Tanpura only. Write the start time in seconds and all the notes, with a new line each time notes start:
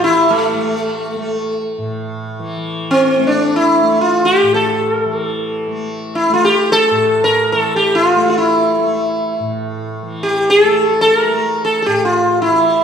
Already playing: A2 E3 A3
0.54 A3
1.16 A3
1.78 A2
2.39 E3
2.57 E3
3.18 A3
3.82 A3
4.42 A2
5.06 E3
5.67 A3
6.29 A3
6.91 A2
7.53 E3
8.16 A3
8.78 A3
9.40 A2
10.02 E3
10.63 A3
11.25 A3
11.87 A2
12.48 E3